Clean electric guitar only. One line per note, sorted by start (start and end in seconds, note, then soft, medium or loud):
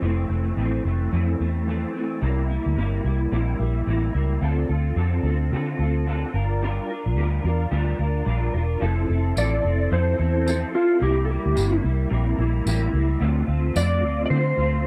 0.01 0.29 F2 medium
0.01 0.30 E3 medium
0.01 0.30 A3 medium
0.01 0.27 C4 medium
0.29 0.58 A3 soft
0.29 0.57 C4 medium
0.33 0.56 E3 soft
0.56 0.84 F2 medium
0.56 0.85 E3 medium
0.56 0.85 A3 medium
0.60 0.82 C4 medium
0.84 1.12 E3 soft
0.84 1.13 A3 soft
0.84 1.12 C4 soft
1.12 1.39 F2 medium
1.12 1.40 E3 medium
1.12 1.39 A3 medium
1.12 1.38 C4 medium
1.39 1.67 E3 soft
1.39 1.68 A3 soft
1.39 1.67 C4 medium
1.66 1.94 F2 medium
1.66 1.95 E3 medium
1.66 1.94 A3 medium
1.66 1.92 C4 medium
1.93 2.21 E3 soft
1.93 2.22 A3 soft
1.93 2.21 C4 medium
2.21 2.49 C3 medium
2.21 2.49 G3 medium
2.21 2.50 A#3 medium
2.21 2.48 E4 medium
2.49 2.76 G3 soft
2.49 2.77 A#3 soft
2.49 2.77 E4 medium
2.76 3.04 C3 medium
2.76 3.04 G3 medium
2.76 3.05 A#3 medium
2.76 3.03 E4 medium
3.04 3.31 G3 soft
3.04 3.32 A#3 soft
3.04 3.32 E4 medium
3.31 3.59 C3 medium
3.31 3.60 G3 medium
3.31 3.59 A#3 medium
3.31 3.58 E4 medium
3.59 3.86 G3 soft
3.59 3.88 A#3 soft
3.59 3.87 E4 soft
3.86 4.14 C3 medium
3.86 4.15 G3 medium
3.86 4.14 A#3 medium
3.86 4.12 E4 medium
4.13 4.42 A#3 medium
4.13 4.41 E4 medium
4.17 4.44 G3 soft
4.41 4.69 D3 medium
4.41 4.70 C4 medium
4.41 4.69 F4 medium
4.41 4.67 A4 medium
4.68 4.96 C4 soft
4.68 4.97 F4 soft
4.68 4.96 A4 soft
4.95 5.24 D3 medium
4.95 5.25 C4 medium
4.95 5.25 F4 medium
4.95 5.23 A4 medium
5.24 5.53 F4 soft
5.24 5.52 A4 soft
5.28 5.52 C4 soft
5.52 5.79 D3 medium
5.52 5.80 C4 medium
5.52 5.80 F4 medium
5.52 5.78 A4 medium
5.79 6.08 F4 soft
5.79 6.07 A4 medium
5.83 6.07 C4 soft
6.06 6.34 D3 medium
6.06 6.35 C4 medium
6.06 6.35 F4 medium
6.06 6.33 A4 medium
6.34 6.62 D4 soft
6.34 6.62 F4 soft
6.34 6.62 A#4 medium
6.62 6.89 G3 medium
6.62 6.90 D4 medium
6.62 6.90 F4 medium
6.62 6.88 A#4 medium
6.89 7.17 D4 soft
6.89 7.18 F4 soft
6.89 7.17 A#4 soft
7.17 7.44 G3 medium
7.17 7.45 D4 medium
7.17 7.45 F4 medium
7.17 7.43 A#4 medium
7.44 7.71 D4 soft
7.44 7.72 F4 soft
7.44 7.72 A#4 soft
7.71 7.99 G3 medium
7.71 7.99 D4 medium
7.71 7.99 F4 medium
7.71 7.97 A#4 medium
7.98 8.26 D4 soft
7.98 8.27 F4 soft
7.98 8.26 A#4 medium
8.25 8.53 G3 medium
8.25 8.54 D4 medium
8.25 8.54 F4 medium
8.25 8.52 A#4 medium
8.53 8.80 D4 soft
8.53 8.81 F4 soft
8.53 8.81 A#4 medium
8.80 9.08 F3 medium
8.80 9.09 C4 medium
8.80 9.09 E4 medium
8.80 9.07 A4 medium
9.08 9.35 C4 soft
9.08 9.36 E4 medium
9.08 9.36 A4 medium
9.36 9.64 F3 medium
9.36 9.64 C4 medium
9.36 9.63 E4 medium
9.36 9.60 A4 medium
9.62 9.90 C4 soft
9.62 9.91 E4 soft
9.62 9.90 A4 soft
9.90 10.18 F3 medium
9.90 10.19 C4 medium
9.90 10.19 E4 medium
9.94 10.17 A4 medium
10.18 10.45 C4 soft
10.18 10.47 E4 soft
10.18 10.46 A4 soft
10.45 10.73 F3 medium
10.45 10.74 C4 medium
10.45 10.74 E4 medium
10.45 10.71 A4 medium
10.72 11.01 C4 soft
10.72 11.01 E4 soft
10.72 11.01 A4 soft
10.99 11.27 C3 medium
10.99 11.28 G3 medium
10.99 11.28 A#3 medium
10.99 11.26 E4 medium
11.27 11.55 A#3 soft
11.27 11.55 E4 soft
11.31 11.54 G3 soft
11.55 11.83 C3 medium
11.55 11.83 G3 medium
11.55 11.83 A#3 medium
11.55 11.81 E4 medium
11.82 12.09 G3 soft
11.82 12.10 A#3 soft
11.82 12.10 E4 soft
12.09 12.37 C3 medium
12.09 12.38 G3 medium
12.09 12.38 A#3 medium
12.09 12.36 E4 medium
12.38 12.65 G3 soft
12.38 12.66 A#3 soft
12.38 12.65 E4 medium
12.66 12.93 C3 medium
12.66 12.93 G3 medium
12.66 12.93 A#3 medium
12.66 12.91 E4 medium
12.92 13.20 G3 soft
12.92 13.21 A#3 soft
12.92 13.20 E4 medium
13.20 13.48 D3 medium
13.20 13.48 A3 medium
13.20 13.47 C4 medium
13.20 13.45 F4 medium
13.46 13.74 A3 soft
13.46 13.75 C4 medium
13.46 13.75 F4 medium
13.74 14.02 D3 medium
13.74 14.03 A3 medium
13.74 14.02 C4 medium
13.74 14.00 F4 medium
14.01 14.30 C4 soft
14.01 14.29 F4 soft
14.05 14.30 A3 soft
14.30 14.57 D3 medium
14.30 14.58 A3 medium
14.30 14.58 C4 medium
14.34 14.56 F4 medium
14.57 14.85 A3 soft
14.57 14.86 C4 soft
14.57 14.85 F4 medium